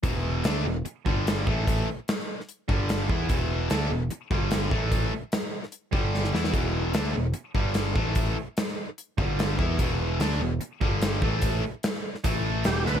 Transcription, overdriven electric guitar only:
\new Staff \with { instrumentName = "Overdriven electric guitar" } { \clef bass \time 4/4 \key e \minor \tempo 4 = 148 <e, b, e>4 <d a d'>8 <e, b,>8 r8 <g, d g>4 <a, e a>8~ | <a, e a>8 r2 <g, d g>4 <e b e'>8 | <e, b, e>4 <d a d'>8 <e, b,>8 r8 <g, d g>4 <a, e a>8~ | <a, e a>8 r2 <g, d g>4 <e b e'>8 |
<e, b, e>4 <d a d'>8 <e, b,>8 r8 <g, d g>4 <a, e a>8~ | <a, e a>8 r2 <g, d g>4 <e b e'>8 | <e, b, e>4 <d a d'>8 <e, b,>8 r8 <g, d g>4 <a, e a>8~ | <a, e a>8 r4. <a, e a>4 <e, b, e>8 <d a d'>8 | }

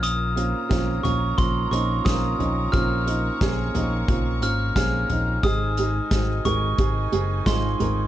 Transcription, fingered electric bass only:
\new Staff \with { instrumentName = "Fingered electric bass" } { \clef bass \time 4/4 \key bes \minor \tempo 4 = 89 bes,,4 bes,,8 bes,,8 bes,,8 bes,,8 bes,,8 bes,,8 | bes,,4 bes,,8 bes,,8 bes,,8 aes,,8 bes,,8 bes,,8 | aes,,4 aes,,8 aes,,8 aes,,8 ges,,8 aes,,8 aes,,8 | }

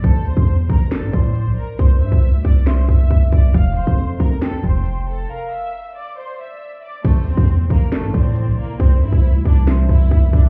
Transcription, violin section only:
\new Staff \with { instrumentName = "Violin section" } { \time 4/4 \key a \phrygian \tempo 4 = 137 <a' a''>8 <c'' c'''>4 <bes' bes''>8 <a' a''>8 <c'' c'''>4 <bes' bes''>8 | <c'' c'''>8 <e'' e'''>4 <d'' d'''>8 <c'' c'''>8 <e'' e'''>4 <d'' d'''>8 | <f'' f'''>8 <c'' c'''>4 <bes' bes''>8 <a' a''>8 <c'' c'''>4 <a' a''>8 | <bes' bes''>8 <e'' e'''>4 <d'' d'''>8 <c'' c'''>8 <e'' e'''>4 <d'' d'''>8 |
<a a'>8 <c' c''>4 <bes bes'>8 <a a'>8 <c' c''>4 <bes bes'>8 | <c' c''>8 <e' e''>4 <d' d''>8 <c' c''>8 <e' e''>4 <d' d''>8 | }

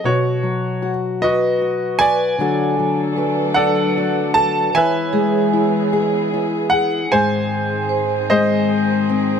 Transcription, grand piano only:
\new Staff \with { instrumentName = "Grand piano" } { \time 6/8 \key gis \phrygian \tempo 4. = 51 << { cis''4 r8 dis''4 gis''8~ | gis''4. fis''4 a''8 | gis''2~ gis''8 fis''8 | gis''4. dis''4. | } \\ { fis'4. fis'4 d''8~ | d''4. <a' d''>4. | <b' e''>2~ <b' e''>8 r8 | bis'4. bis'4. | } >> }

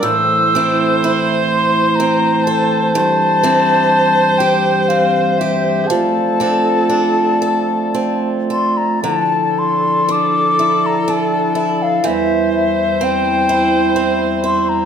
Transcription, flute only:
\new Staff \with { instrumentName = "Flute" } { \time 3/4 \key d \minor \tempo 4 = 61 e'''4~ e'''16 r16 c'''8 bes''8 a''8 | a''4. g''8 f''8 e''8 | a''2~ a''8 c'''16 bes''16 | a''8 c'''8 d'''8. bes''16 a''8. f''16 |
e''8 e''8 g''4~ g''16 r16 c'''16 bes''16 | }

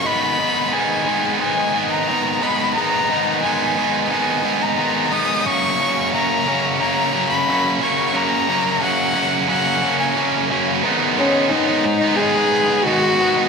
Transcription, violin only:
\new Staff \with { instrumentName = "Violin" } { \time 4/4 \key gis \minor \tempo 4 = 89 b''4 gis''4 gis''8. ais''8. b''8 | ais''4 gis''4 gis''8. ais''8. dis'''8 | cis'''4 ais''4 ais''8. b''8. cis'''8 | ais''4 fis''4 fis''8. gis''8. r8 |
r8 cis'8 dis'4 gis'4 fis'4 | }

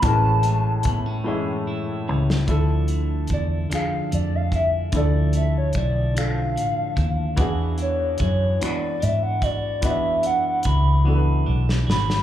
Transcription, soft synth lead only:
\new Staff \with { instrumentName = "Soft synth lead" } { \time 6/8 \key d \lydian \tempo 4. = 49 a''4 r2 | r4 d''8 f''8 d''16 f''16 e''8 | d''8 e''16 cis''16 d''8 f''4. | r8 cis''8 cis''8 d''8 e''16 fis''16 d''8 |
e''8 fis''16 fis''16 b''8 r4 b''8 | }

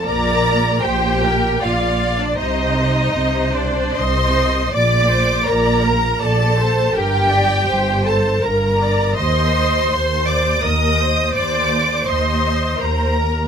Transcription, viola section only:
\new Staff \with { instrumentName = "Viola section" } { \time 3/4 \key bes \major \tempo 4 = 81 d''4 c''8 bes'8 d''4 | c''4 c''4 ees''4 | d''8 c''8 d''8 bes'8 d''8 c''8 | bes'8 d''8 c''4 bes'8 d''8 |
ees''4 c''4 bes'8 c''8~ | c''4 ees''4 c''8 bes'8 | }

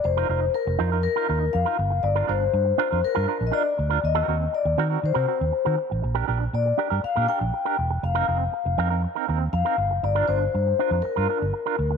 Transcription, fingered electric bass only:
\new Staff \with { instrumentName = "Fingered electric bass" } { \clef bass \time 4/4 \key g \minor \tempo 4 = 120 f,,8 f,,8 r16 f,,16 f,8. r16 ees,8 f,16 r16 g,,16 ges,,16 | g,,8 g,,8 g,8 r16 f,16 r16 g,16 r16 bes,,16 r8 d,8 | ees,8 ees,8 r16 ees,16 ees8 ees16 c16 r16 ees,16 r16 ees16 r16 a,,16 | bes,,8 bes,,8 bes,8 r16 g,16 r16 bes,16 r16 bes,,16 r8 e,,8 |
f,,8 f,,8 r16 f,,16 f,8. r16 ees,8 f,16 r16 g,,16 ges,,16 | g,,8 g,,8 g,8 r16 f,16 r16 g,16 r16 g,,16 r8 d,8 | }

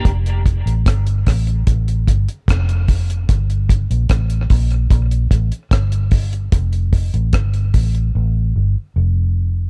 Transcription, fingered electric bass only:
\new Staff \with { instrumentName = "Fingered electric bass" } { \clef bass \time 4/4 \key f \mixolydian \tempo 4 = 74 f,,8. a,,16 g,,8 a,,8 a,,8 g,,16 r16 f,,4 | g,,8. bes,,16 a,,8 bes,,8 bes,,8 a,,16 r16 g,,4 | f,,8. a,,16 g,,8 a,,8 a,,8 g,,16 r16 f,,4 | }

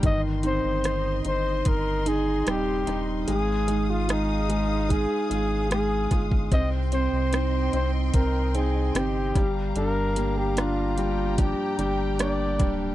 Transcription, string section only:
\new Staff \with { instrumentName = "String section" } { \time 4/4 \key c \minor \tempo 4 = 74 << { c'''1 | <aes' ees'''>1 | <g'' c'''>2.~ <g'' c'''>8 <g' bes''>8~ | <g' bes''>1 | } \\ { ees''1 | f''1 | ees''2.~ ees''8 f''8~ | f''4. g''2~ g''8 | } >> }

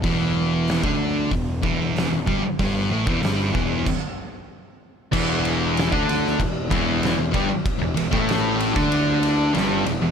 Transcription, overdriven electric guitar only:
\new Staff \with { instrumentName = "Overdriven electric guitar" } { \clef bass \time 4/4 \key e \minor \tempo 4 = 95 r1 | r1 | <e, e>4~ <e, e>16 <d d'>8. e,8 <e, e>8. e,16 <g, g>16 r16 | r16 e,16 e,16 <a, a>4 <d d'>4~ <d d'>16 <g, g>8 e,16 e,16 | }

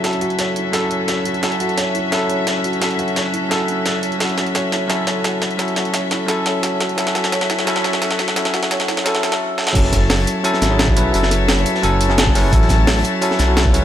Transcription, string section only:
\new Staff \with { instrumentName = "String section" } { \time 4/4 \key fis \minor \tempo 4 = 173 << { <cis' fis' e''>1~ | <cis' fis' e''>1~ | <cis' fis' e''>1~ | <cis' fis' e''>1~ |
<cis' fis' e''>1 | <cis' fis' e''>1~ | <cis' fis' e''>2. r4 | <fis' cis'' a''>1~ |
<fis' cis'' a''>1~ | <fis' cis'' a''>1 | } \\ { a'1~ | a'1~ | a'1 | a'1~ |
a'1 | a'1~ | a'2. r4 | e''1~ |
e''1 | e''1 | } >> }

